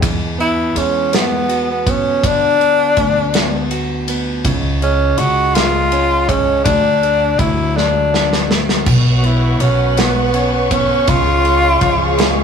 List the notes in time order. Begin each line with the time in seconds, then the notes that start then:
Already playing: G#3 C#5
0.02 E2 E3, kick, ride
0.38 B3 E4, ride
0.75 E2 G#3 C#4, ride
1.13 B3, snare, ride
1.49 F#4, ride
1.71 B3
1.87 B3 C#4, kick, ride
2.23 D2 D3 D4, kick, ride
2.60 B3, ride
2.97 D2 A3, kick, ride
3.34 B3, snare, ride
3.71 F#4, ride
4.08 B3, ride
4.44 C#2 C#3, kick, ride
4.82 G#3 C#4, ride
5.18 C#2 F#4, ride
5.55 G#3 F4, snare, ride
5.92 C#4, ride
6.29 G#3 C#4, kick, ride
6.65 D2 D3 D4, kick, ride
7.02 A3, ride
7.39 D2 F#3 E4, kick, ride
7.76 A3 D4, snare
8.13 D4, snare
8.33 snare
8.50 A3, snare
8.69 snare
8.86 B1 B2 B4 C#5 F#5 C#6, kick, crash
9.18 F#4
9.23 B3 E4, ride
9.60 B1 F#3 C#4, ride
9.97 B3, snare, ride
10.34 C#4, ride
10.54 B3
10.71 B3 C#4, kick, ride
11.07 C#2 C#3 F4 G#4 F5, kick, ride
11.44 G#3, ride
11.81 C#2 F3, kick, ride
12.17 G#3, snare, ride